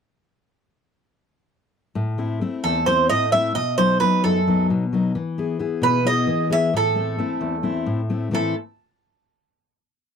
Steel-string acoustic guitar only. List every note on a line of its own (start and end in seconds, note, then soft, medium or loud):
1.95 2.40 A2 medium
2.18 2.40 A3 soft
2.18 2.41 C4 soft
2.18 2.41 E4 soft
2.41 2.78 A3 soft
2.41 2.78 C4 soft
2.41 2.79 E4 medium
2.64 3.09 E2 medium
2.87 3.24 A3 soft
2.87 3.24 C4 soft
2.87 3.24 E4 medium
3.10 3.55 A2 medium
3.33 3.52 A3 soft
3.33 3.52 C4 soft
3.33 3.52 E4 soft
3.55 4.00 B2 medium
3.78 3.99 F#3 soft
3.78 4.00 B3 soft
3.78 4.00 D#4 soft
4.01 4.37 F#3 soft
4.01 4.38 B3 soft
4.01 4.38 D#4 medium
4.24 4.69 F#2 medium
4.47 4.84 F#3 medium
4.47 4.84 B3 soft
4.47 4.84 D#4 medium
4.70 5.14 B2 medium
4.93 5.11 F#3 soft
4.93 5.11 B3 soft
4.93 5.12 D#4 soft
5.15 5.59 E3 medium
5.38 5.58 B3 soft
5.38 5.59 E4 soft
5.38 5.59 G#4 medium
5.59 5.96 B3 soft
5.59 5.97 E4 soft
5.59 5.97 G#4 medium
5.82 6.27 B2 medium
6.05 6.42 B3 soft
6.05 6.42 E4 soft
6.05 6.42 G#4 medium
6.27 6.72 E3 medium
6.50 6.69 B3 soft
6.50 6.69 E4 soft
6.50 6.69 G#4 soft
6.74 7.18 A2 medium
6.96 7.17 A3 soft
6.96 7.17 C4 soft
6.96 7.18 E4 soft
7.18 7.55 A3 soft
7.18 7.55 C4 soft
7.18 7.56 E4 soft
7.41 7.85 E2 medium
7.63 8.00 A3 soft
7.63 8.00 C4 soft
7.63 8.00 E4 medium
7.86 8.30 A2 medium
8.10 8.28 A3 soft
8.10 8.28 C4 soft
8.10 8.28 E4 soft
8.31 8.53 A2 soft
8.31 8.53 E3 soft
8.31 8.54 A3 soft
8.31 8.54 C4 soft
8.31 8.54 E4 medium